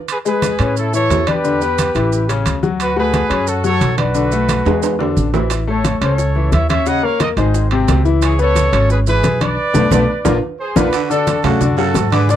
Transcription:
0.08 trumpet section G#4 B4, high conga, high timbale, maracas
0.25 upright piano G#3 G#4, trumpet section G#4 B4, high conga, maracas
0.42 high conga, high timbale, maracas
0.59 upright bass A2, upright piano C#4 C#5, high conga, high timbale, maracas
0.77 trumpet section E4 A4, high conga, maracas
0.93 upright piano E3 E4, trumpet section A4 C#5, high conga, maracas
1.10 upright bass E2, high conga, high timbale, low timbale, maracas
1.27 upright piano D4 D5, trumpet section G4 B4, high conga, high timbale, maracas
1.44 upright piano D3 D4, high conga, maracas
1.61 upright piano B3 B4, high conga, maracas
1.78 high conga, high timbale, maracas
1.95 upright bass A1, upright piano E3 E4, high conga, high timbale, maracas
2.12 high conga, maracas
2.29 upright piano C#3 C#4, high conga, high timbale, maracas
2.45 upright bass D2, high conga, high timbale, maracas
2.63 upright piano F#3 F#4, high conga, maracas
2.80 trumpet section F#4 B4, high conga, high timbale, maracas
2.96 upright piano A3 F#4, trumpet section G#4 B4, high conga
3.14 high conga, high timbale, maracas
3.29 upright bass F#2, upright piano C#4 C#5, high conga, high timbale, maracas
3.47 trumpet section F#4 A4, high conga, maracas
3.64 upright piano F#3 F#4, trumpet section A4 C#5, high conga, maracas
3.81 upright bass B1, high conga, high timbale, maracas
3.98 upright piano D4 D5, trumpet section F#4 B4, high conga, high timbale, maracas
4.15 upright piano D3 D4, high conga, maracas
4.32 upright piano A3 A4, high conga, maracas
4.49 high conga, high timbale, maracas
4.65 upright bass E2, upright piano G#3 G#4, high conga, high timbale, maracas
4.83 high conga, high timbale, maracas
4.99 upright piano D3 D4, high conga, low timbale
5.16 upright bass A1, high conga, maracas
5.34 upright piano E3 E4, high conga, low timbale, maracas
5.50 high bongo, high conga, high timbale, maracas
5.67 upright piano A3 A4, trumpet section A4 C#5, high conga
5.85 high bongo, high conga, high timbale, maracas
6.01 upright bass C#2, upright piano C#4 C#5, trumpet section A4 C#5, high bongo, high conga, high timbale, maracas
6.18 high bongo, high conga, maracas
6.35 upright piano E3 E4, high bongo, high conga
6.52 upright bass D#2, trumpet section C#5 E5, high bongo, low bongo, high conga, high timbale, maracas
6.69 upright piano C#4 C#5, trumpet section C#5 E5, high bongo, high conga, high timbale, maracas
6.86 upright piano C#3 C#4, trumpet section D#5 F#5, high bongo, high conga, maracas
7.03 upright piano A#3 A#4, trumpet section C#5 F5, high conga
7.20 trumpet section A#4 D#5, high bongo, high conga, high timbale, maracas
7.37 upright bass G#1, upright piano D#3 D#4, trumpet section G#4 C5, high bongo, high conga, high timbale, maracas
7.54 high bongo, high conga, maracas
7.71 upright piano C3 C4, high bongo, high conga, high timbale
7.88 upright bass C#2, high bongo, low bongo, high conga, high timbale, low timbale, maracas
8.05 upright piano E3 E4, high bongo, maracas
8.22 trumpet section G#4 C#5, high bongo, high conga, high timbale, maracas
8.39 upright piano B3 B4, trumpet section A4 C#5, high conga, maracas
8.55 high bongo, high conga, high timbale, maracas
8.72 upright bass G#1, upright piano C#4 C#5, high bongo, high conga, high timbale, maracas
8.90 trumpet section G#4 B4, high bongo, high conga, maracas
9.07 upright piano E3 E4, trumpet section G#4 B4, high bongo, high conga, maracas
9.23 upright bass B1, high bongo, low bongo, high conga, high timbale, maracas
9.41 upright piano D4 D5, trumpet section B4 D5, high bongo, high conga, high timbale, maracas
9.74 upright bass B1, upright piano A3 B3 D4, low bongo, high conga, high timbale, maracas
9.91 upright bass B1, upright piano A3 B3 D4, low bongo, high conga, high timbale, maracas
10.25 upright bass A#1, upright piano A#3 D4 F4, low bongo, high conga, high timbale, maracas
10.60 trumpet section G#4 C5
10.76 upright bass A#1, upright piano A#3 D4 F4, trumpet section F#4 B4, low bongo, high conga, high timbale, maracas
10.92 baritone saxophone D3, high bongo, high conga, high timbale, maracas
11.10 upright piano D3 D4 D5, trumpet section F#4 A4, high conga, maracas
11.27 high bongo, high conga, high timbale, maracas
11.44 upright bass F#2, baritone saxophone C#3, upright piano A3 A4 A5, trumpet section D4 F#4, high bongo, high conga, low conga, high timbale, maracas
11.61 upright piano D3 D4 D5, high bongo, high conga, low conga, maracas
11.77 baritone saxophone C#3, upright piano F#3 F#4 F#5, trumpet section F#4 A4, high bongo
11.94 upright bass G#2, high bongo, low bongo, high conga, high timbale, low timbale, maracas
12.12 baritone saxophone D3, upright piano D4 D5 D6, trumpet section G#4 B4, high bongo, high conga, high timbale, maracas
12.29 upright piano D3 D4 D5, trumpet section B4 D5, high bongo, maracas

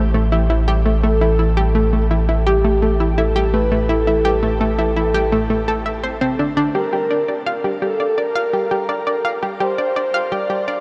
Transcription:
Already playing: analog synth bass A1
0.14 synth arpeggio sound A3
0.32 synth arpeggio sound E4
0.50 synth arpeggio sound E4
0.68 synth arpeggio sound G4
0.86 synth arpeggio sound A3
1.03 synth arpeggio sound A3, soft synth lead A4
1.21 synth arpeggio sound E4
1.39 synth arpeggio sound E4
1.57 synth arpeggio sound G4
1.75 synth arpeggio sound A3
1.93 synth arpeggio sound A3
2.11 synth arpeggio sound E4
2.29 synth arpeggio sound E4
2.46 soft synth lead G4, synth arpeggio sound G4
2.64 synth arpeggio sound A3
2.82 synth arpeggio sound A3
3.00 synth arpeggio sound E4
3.18 synth arpeggio sound E4, soft synth lead A4
3.36 synth arpeggio sound G4
3.53 synth arpeggio sound A3, soft synth lead B4
3.72 synth arpeggio sound A3
3.89 synth arpeggio sound E4, soft synth lead A4
4.07 synth arpeggio sound E4
4.25 synth arpeggio sound G4
4.43 synth arpeggio sound A3
4.61 synth arpeggio sound A3
4.79 synth arpeggio sound E4
4.96 synth arpeggio sound E4
5.14 synth arpeggio sound G4
5.32 synth arpeggio sound A3
5.50 synth arpeggio sound A3
5.68 synth arpeggio sound A4
5.86 synth arpeggio sound E5
6.04 synth arpeggio sound C5
6.21 synth arpeggio sound C4
6.39 synth arpeggio sound D4
6.57 synth arpeggio sound D4
6.75 synth arpeggio sound G4, soft synth lead A#4
6.93 synth arpeggio sound G4
7.11 synth arpeggio sound D5
7.28 synth arpeggio sound D5
7.46 synth arpeggio sound F5
7.64 synth arpeggio sound G4
7.82 synth arpeggio sound G4, soft synth lead A4
8.00 synth arpeggio sound D5
8.18 soft synth lead A#4, synth arpeggio sound D5
8.35 synth arpeggio sound F5
8.53 synth arpeggio sound G4
8.71 synth arpeggio sound G4
8.89 synth arpeggio sound D5
9.07 synth arpeggio sound D5
9.25 synth arpeggio sound F5
9.43 synth arpeggio sound G4
9.60 synth arpeggio sound G4, soft synth lead C5
9.78 synth arpeggio sound D5
9.96 synth arpeggio sound D5
10.14 synth arpeggio sound F5
10.32 synth arpeggio sound G4, soft synth lead D5
10.50 synth arpeggio sound G4
10.68 synth arpeggio sound D5

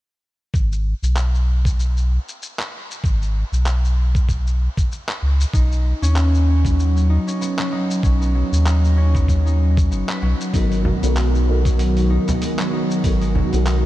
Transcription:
0.54 sub bass G#1, kick, shaker
0.72 shaker
1.03 sub bass B1, shaker
1.17 clap, shaker
1.35 shaker
1.65 kick, shaker
1.80 shaker
1.97 shaker
2.29 shaker
2.43 shaker
2.60 clap, shaker
2.91 shaker
3.04 sub bass G#1, kick, shaker
3.22 shaker
3.52 sub bass B1, shaker
3.66 clap, shaker
3.85 shaker
4.15 kick, shaker
4.29 kick, shaker
4.47 shaker
4.77 kick, shaker
4.92 shaker
5.09 clap, shaker
5.22 sub bass C#2
5.41 shaker
5.53 sub bass B1, harp D#4, kick, shaker
5.72 shaker
6.02 sub bass D#2, harp C#4, shaker
6.16 harp B3, clap, shaker
6.34 shaker
6.65 harp F#3, kick, shaker
6.79 shaker
6.97 shaker
7.10 harp D#4
7.27 harp C#4, shaker
7.41 harp B3, shaker
7.59 harp F#3, clap, shaker
7.72 harp D#4
7.91 shaker
8.03 sub bass B1, harp C#4, kick, shaker
8.21 harp B3, shaker
8.35 harp F#3
8.52 sub bass D#2, shaker
8.66 harp D#4, clap, shaker
8.85 shaker
8.97 harp C#4
9.15 harp B3, kick, shaker
9.28 harp F#3, kick, shaker
9.46 harp D#4, shaker
9.77 kick, shaker
9.91 sub bass F#1, harp B3, shaker
10.09 harp B4, clap, shaker
10.22 sub bass B1, harp F#3
10.41 shaker
10.52 sub bass G#1, ambient pad D#3 F#3 G#3 B3 F#4, felt piano B3 D#4 F#4 A#4, harp D#4, kick, open hi-hat, shaker
10.72 open hi-hat, shaker
10.85 frame drum
11.02 sub bass B1, felt piano B3 D#4 F#4 A#4, harp B3, open hi-hat, shaker
11.16 harp G#3, clap, open hi-hat, shaker
11.35 shaker
11.47 felt piano B3 D#4 F#4 A#4
11.65 harp F#3, kick, open hi-hat, shaker
11.79 open hi-hat, shaker
11.97 open hi-hat, shaker
12.10 harp D#4
12.28 harp B3, open hi-hat, frame drum, shaker
12.41 harp G#3, open hi-hat, shaker
12.59 harp F#3, clap, open hi-hat, shaker
12.73 harp D#4
12.91 shaker
13.03 sub bass G#1, felt piano B3 D#4 F#4 A#4, harp B3, kick, open hi-hat, shaker
13.21 harp G#3, open hi-hat, shaker
13.35 harp F#3, frame drum
13.52 sub bass B1, felt piano B3 D#4 F#4 A#4, open hi-hat, shaker
13.66 harp D#4, clap, open hi-hat, shaker

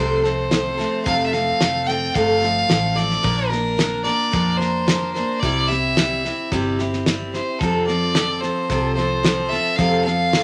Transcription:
Already playing: fingered electric bass C2, steel-string acoustic guitar F2 C3 F3 A3 C4, fiddle C5
0.00 steel-string acoustic guitar A4
0.23 steel-string acoustic guitar F3 A3 C4 A4, fiddle C5, snare
0.51 steel-string acoustic guitar F3 A3 C4 A4, snare, hi-hat pedal
0.77 steel-string acoustic guitar F3 A3 C4 A4, snare
1.05 fingered electric bass F1, steel-string acoustic guitar F2 C3 F3 A3 C4 A4, fiddle F5, kick, snare
1.26 fiddle E5
1.33 steel-string acoustic guitar F3 A3 C4 A4, fiddle F5, snare
1.60 fingered electric bass F1, steel-string acoustic guitar F3 A3 C4 A4, snare, hi-hat pedal
1.87 steel-string acoustic guitar F3 A3 C4 A4, fiddle G5, snare
2.14 fingered electric bass G1, steel-string acoustic guitar F2 C3 F3 A3 C4 A4, fiddle F5, kick, snare
2.42 steel-string acoustic guitar F3 A3 C4 A4, snare
2.69 fingered electric bass A1, steel-string acoustic guitar F3 A3 C4 A4, snare, hi-hat pedal
2.96 steel-string acoustic guitar F3 A3 C4 A4, fiddle D5, snare
3.10 snare
3.23 fingered electric bass A#1, steel-string acoustic guitar A#2 F3 A#3 D4 A#4, kick, snare
3.49 steel-string acoustic guitar A#3 D4 A#4, fiddle A#4, snare
3.77 steel-string acoustic guitar F3 A#3 D4 A#4, snare, hi-hat pedal
4.03 steel-string acoustic guitar A#3 D4 A#4, fiddle D5, snare
4.31 fingered electric bass F2, steel-string acoustic guitar A#2 F3 A#3 D4 A#4, kick, snare
4.57 steel-string acoustic guitar D4 A#4, fiddle C5, snare
4.61 steel-string acoustic guitar A#3
4.87 steel-string acoustic guitar F3 A#3 D4 A#4, snare, hi-hat pedal
5.13 steel-string acoustic guitar D4 A#4, fiddle C5, snare
5.17 steel-string acoustic guitar A#3
5.40 fingered electric bass C2, steel-string acoustic guitar C3 G3 C4, fiddle D5, kick, snare
5.44 steel-string acoustic guitar E4 G4
5.68 steel-string acoustic guitar C4 E4 G4, fiddle E5, snare
5.97 steel-string acoustic guitar G3 C4 E4 G4, snare, hi-hat pedal
6.24 steel-string acoustic guitar C4 E4 G4, snare
6.52 fingered electric bass G1, steel-string acoustic guitar C3 G3 C4 E4 G4, kick, snare
6.79 steel-string acoustic guitar C4 E4 G4, snare
6.93 snare
7.06 steel-string acoustic guitar G3 C4 E4 G4, snare, hi-hat pedal
7.33 steel-string acoustic guitar C4 E4 G4, fiddle C5, snare
7.59 fingered electric bass F2, steel-string acoustic guitar F2 C3 F3 C4 F4 A4, fiddle A4, kick, snare
7.87 steel-string acoustic guitar F3 C4 F4 A4, fiddle D5, snare
8.15 steel-string acoustic guitar F3 C4 F4 A4, snare, hi-hat pedal
8.40 steel-string acoustic guitar C4 F4 A4, fiddle C5, snare
8.44 steel-string acoustic guitar F3
8.70 fingered electric bass C2, steel-string acoustic guitar F2 C3 F3 C4 F4 A4, kick, snare
8.95 steel-string acoustic guitar C4 F4 A4, fiddle C5, snare
8.99 steel-string acoustic guitar F3
9.23 steel-string acoustic guitar F3 C4 F4 A4, snare, hi-hat pedal
9.49 steel-string acoustic guitar C4 F4 A4, fiddle E5, snare
9.53 steel-string acoustic guitar F3
9.76 steel-string acoustic guitar F2 C3 F3 C4 F4 A4, fingered electric bass F2, fiddle F5, kick, snare
10.04 steel-string acoustic guitar F3 C4 F4 A4, fiddle F5, snare
10.33 steel-string acoustic guitar F3 C4 F4 A4, snare, hi-hat pedal

